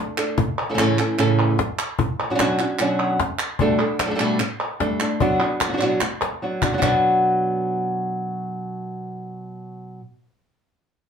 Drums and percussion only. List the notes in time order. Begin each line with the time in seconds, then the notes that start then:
0.18 clap
0.38 cajon bass
0.58 clap
0.78 cajon slap, clap
0.99 clap
1.19 cajon slap, clap
1.39 clap
1.59 cajon bass, cajon slap
1.79 clap
1.99 cajon bass
2.19 cajon slap, clap
2.39 cajon slap, clap
2.59 clap
2.79 cajon slap, clap
2.99 clap
3.20 cajon bass, cajon slap
3.39 clap
3.59 cajon bass
3.79 cajon slap, clap
4.00 cajon slap, clap
4.19 clap
4.40 cajon slap, clap
4.60 cajon slap, clap
4.80 cajon bass, cajon slap
5.00 clap
5.20 cajon bass
5.40 cajon slap, clap
5.61 cajon slap, clap
5.81 clap
6.01 cajon slap, clap
6.21 cajon slap, clap
6.62 cajon bass, clap
6.82 cajon bass, clap